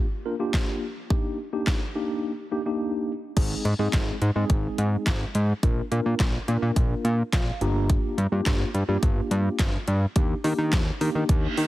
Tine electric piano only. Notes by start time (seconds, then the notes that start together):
0.25 A#3 D4 F4 A#4
0.39 A#3 D4 F4 G4
1.10 A#3 D4 D#4 G4
1.53 A#3 D4 D#4 G4
1.95 A#3 D4 D#4 G4
2.52 A#3 D4 D#4 G4
2.66 A#3 D4 D#4 G4
3.37 G#3 C4 D#4 G#4
3.79 G#3 C4 D#4 G#4
4.35 G#3 C4 D#4 G#4
5.63 A#3 D4 F4 A#4
5.91 A#3 D4 F4 A#4
6.48 A#3 D4 F4 A#4
7.33 F5
7.61 A#3 D4 F4 G4 A#5
8.32 A#3 D4 F4 G4
8.88 A#3 D4 F4 G4
10.16 A#3 D4 D#4 G4
10.44 A#3 D4 D#4 G4
11.01 A#3 D4 D#4 G4